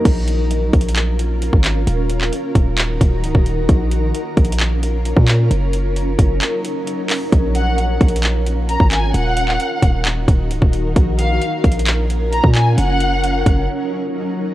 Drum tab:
CC |x-----------------------------------------------|------------------------------------------------|------------------------------------------------|------------------------------------------------|
HH |x-----x-----x-----x-x-x-x-----x-----x-----x-----|x-----x-----x-----x-----x-----x-----x-----x-----|x-----x-----x-----x-x-x-x-----x-----x-----x-----|x-----x-----x-----x-----x-----x-----x-----o-----|
CP |------------------------x-----------------x-----|---------x--------------x-----------------------|------------------------x-----------------x-----|------------------------x-----------------x-----|
BD |o-----------------o--------------------o--------|------------------o-----------o--------o--------|o-----------------o--------------------o--------|------------------o-----------------------------|

CC |------------------------------------------------|------------------------------------------------|------------------------------------------------|------------------------------------------------|
HH |x-----x-----x-----x-x-x-x-----x-----x-----x-----|x-----x-----x-----x-----x-----x-----x-----x-----|x-----x-----x-----x-x-x-x-----x-----x-----x-----|x-----x-----x-----x-----------------------------|
CP |------------------------x-----------------x-----|---------x--------------x-----------------------|------------------------x-----------------x-----|------------------------------------------------|
BD |o-----------------o--------------------o--------|------------------o-----------o--------o--------|o-----------------o--------------------o--------|------------------o-----------------------------|